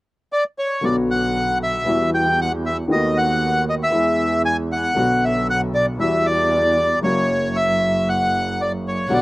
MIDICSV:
0, 0, Header, 1, 5, 480
1, 0, Start_track
1, 0, Key_signature, 2, "minor"
1, 0, Tempo, 517241
1, 775, Time_signature, 4, 2, 24, 8
1, 8553, End_track
2, 0, Start_track
2, 0, Title_t, "Violin"
2, 0, Program_c, 0, 40
2, 8454, Note_on_c, 0, 78, 75
2, 8553, Note_off_c, 0, 78, 0
2, 8553, End_track
3, 0, Start_track
3, 0, Title_t, "Bandoneon"
3, 0, Program_c, 1, 23
3, 303, Note_on_c, 1, 74, 71
3, 409, Note_off_c, 1, 74, 0
3, 544, Note_on_c, 1, 73, 62
3, 787, Note_off_c, 1, 73, 0
3, 787, Note_on_c, 1, 74, 64
3, 893, Note_off_c, 1, 74, 0
3, 1028, Note_on_c, 1, 78, 78
3, 1470, Note_off_c, 1, 78, 0
3, 1514, Note_on_c, 1, 76, 78
3, 1951, Note_off_c, 1, 76, 0
3, 1989, Note_on_c, 1, 79, 70
3, 2228, Note_off_c, 1, 79, 0
3, 2240, Note_on_c, 1, 78, 73
3, 2342, Note_off_c, 1, 78, 0
3, 2469, Note_on_c, 1, 76, 69
3, 2574, Note_off_c, 1, 76, 0
3, 2712, Note_on_c, 1, 75, 68
3, 2947, Note_on_c, 1, 78, 78
3, 2949, Note_off_c, 1, 75, 0
3, 3385, Note_off_c, 1, 78, 0
3, 3429, Note_on_c, 1, 75, 74
3, 3479, Note_off_c, 1, 75, 0
3, 3555, Note_on_c, 1, 76, 82
3, 4104, Note_off_c, 1, 76, 0
3, 4133, Note_on_c, 1, 80, 83
3, 4240, Note_off_c, 1, 80, 0
3, 4382, Note_on_c, 1, 78, 81
3, 4867, Note_on_c, 1, 76, 73
3, 4868, Note_off_c, 1, 78, 0
3, 5080, Note_off_c, 1, 76, 0
3, 5104, Note_on_c, 1, 78, 89
3, 5207, Note_off_c, 1, 78, 0
3, 5331, Note_on_c, 1, 74, 73
3, 5438, Note_off_c, 1, 74, 0
3, 5572, Note_on_c, 1, 76, 77
3, 5808, Note_on_c, 1, 74, 78
3, 5815, Note_off_c, 1, 76, 0
3, 6489, Note_off_c, 1, 74, 0
3, 6530, Note_on_c, 1, 73, 69
3, 7017, Note_on_c, 1, 76, 82
3, 7023, Note_off_c, 1, 73, 0
3, 7507, Note_off_c, 1, 76, 0
3, 7508, Note_on_c, 1, 78, 76
3, 7990, Note_on_c, 1, 74, 69
3, 7994, Note_off_c, 1, 78, 0
3, 8095, Note_off_c, 1, 74, 0
3, 8241, Note_on_c, 1, 73, 63
3, 8475, Note_off_c, 1, 73, 0
3, 8481, Note_on_c, 1, 74, 63
3, 8553, Note_off_c, 1, 74, 0
3, 8553, End_track
4, 0, Start_track
4, 0, Title_t, "Grand piano"
4, 0, Program_c, 2, 0
4, 751, Note_on_c, 2, 50, 44
4, 764, Note_on_c, 2, 54, 43
4, 773, Note_on_c, 2, 35, 52
4, 773, Note_on_c, 2, 47, 52
4, 779, Note_on_c, 2, 59, 41
4, 791, Note_on_c, 2, 66, 54
4, 1676, Note_off_c, 2, 50, 0
4, 1683, Note_off_c, 2, 54, 0
4, 1687, Note_off_c, 2, 35, 0
4, 1687, Note_off_c, 2, 47, 0
4, 1690, Note_off_c, 2, 59, 0
4, 1696, Note_off_c, 2, 66, 0
4, 1713, Note_on_c, 2, 52, 45
4, 1726, Note_on_c, 2, 55, 40
4, 1727, Note_off_c, 2, 52, 0
4, 1728, Note_on_c, 2, 40, 50
4, 1732, Note_on_c, 2, 52, 56
4, 1739, Note_on_c, 2, 59, 44
4, 1749, Note_on_c, 2, 66, 50
4, 2640, Note_off_c, 2, 55, 0
4, 2641, Note_off_c, 2, 40, 0
4, 2643, Note_off_c, 2, 52, 0
4, 2647, Note_off_c, 2, 59, 0
4, 2652, Note_off_c, 2, 66, 0
4, 2671, Note_on_c, 2, 51, 49
4, 2681, Note_on_c, 2, 57, 41
4, 2685, Note_off_c, 2, 51, 0
4, 2687, Note_on_c, 2, 39, 53
4, 2690, Note_on_c, 2, 51, 57
4, 2698, Note_on_c, 2, 59, 44
4, 2708, Note_on_c, 2, 66, 53
4, 3596, Note_off_c, 2, 57, 0
4, 3599, Note_off_c, 2, 39, 0
4, 3601, Note_off_c, 2, 51, 0
4, 3605, Note_off_c, 2, 59, 0
4, 3609, Note_off_c, 2, 66, 0
4, 3627, Note_on_c, 2, 52, 55
4, 3637, Note_on_c, 2, 56, 45
4, 3646, Note_on_c, 2, 40, 55
4, 3649, Note_on_c, 2, 59, 44
4, 3664, Note_on_c, 2, 68, 49
4, 4553, Note_off_c, 2, 56, 0
4, 4557, Note_off_c, 2, 52, 0
4, 4558, Note_off_c, 2, 40, 0
4, 4559, Note_off_c, 2, 59, 0
4, 4567, Note_off_c, 2, 68, 0
4, 4589, Note_on_c, 2, 50, 51
4, 4604, Note_on_c, 2, 54, 49
4, 4607, Note_on_c, 2, 35, 58
4, 4608, Note_on_c, 2, 47, 61
4, 4617, Note_on_c, 2, 59, 45
4, 4624, Note_on_c, 2, 66, 57
4, 5508, Note_off_c, 2, 50, 0
4, 5515, Note_off_c, 2, 54, 0
4, 5517, Note_off_c, 2, 35, 0
4, 5517, Note_off_c, 2, 47, 0
4, 5522, Note_off_c, 2, 59, 0
4, 5525, Note_off_c, 2, 66, 0
4, 5543, Note_on_c, 2, 52, 44
4, 5554, Note_on_c, 2, 55, 44
4, 5557, Note_off_c, 2, 52, 0
4, 5561, Note_on_c, 2, 40, 59
4, 5564, Note_on_c, 2, 52, 57
4, 5567, Note_on_c, 2, 59, 45
4, 5582, Note_on_c, 2, 66, 49
4, 6471, Note_off_c, 2, 55, 0
4, 6474, Note_off_c, 2, 40, 0
4, 6475, Note_off_c, 2, 52, 0
4, 6477, Note_off_c, 2, 59, 0
4, 6485, Note_off_c, 2, 66, 0
4, 6506, Note_on_c, 2, 49, 45
4, 6515, Note_on_c, 2, 54, 57
4, 6521, Note_on_c, 2, 42, 55
4, 6530, Note_on_c, 2, 58, 45
4, 6542, Note_on_c, 2, 66, 55
4, 8347, Note_off_c, 2, 49, 0
4, 8355, Note_off_c, 2, 42, 0
4, 8355, Note_off_c, 2, 54, 0
4, 8360, Note_off_c, 2, 58, 0
4, 8366, Note_off_c, 2, 66, 0
4, 8431, Note_on_c, 2, 50, 47
4, 8441, Note_on_c, 2, 54, 43
4, 8447, Note_on_c, 2, 47, 53
4, 8449, Note_on_c, 2, 35, 58
4, 8453, Note_on_c, 2, 59, 41
4, 8467, Note_on_c, 2, 66, 52
4, 8553, Note_off_c, 2, 35, 0
4, 8553, Note_off_c, 2, 47, 0
4, 8553, Note_off_c, 2, 50, 0
4, 8553, Note_off_c, 2, 54, 0
4, 8553, Note_off_c, 2, 59, 0
4, 8553, Note_off_c, 2, 66, 0
4, 8553, End_track
5, 0, Start_track
5, 0, Title_t, "Double bass"
5, 0, Program_c, 3, 43
5, 772, Note_on_c, 3, 35, 60
5, 1687, Note_off_c, 3, 35, 0
5, 1741, Note_on_c, 3, 40, 60
5, 2648, Note_off_c, 3, 40, 0
5, 2696, Note_on_c, 3, 39, 59
5, 3604, Note_off_c, 3, 39, 0
5, 3656, Note_on_c, 3, 40, 55
5, 4563, Note_off_c, 3, 40, 0
5, 4614, Note_on_c, 3, 35, 63
5, 5520, Note_off_c, 3, 35, 0
5, 5569, Note_on_c, 3, 40, 60
5, 6478, Note_off_c, 3, 40, 0
5, 6527, Note_on_c, 3, 30, 61
5, 8358, Note_off_c, 3, 30, 0
5, 8455, Note_on_c, 3, 35, 57
5, 8553, Note_off_c, 3, 35, 0
5, 8553, End_track
0, 0, End_of_file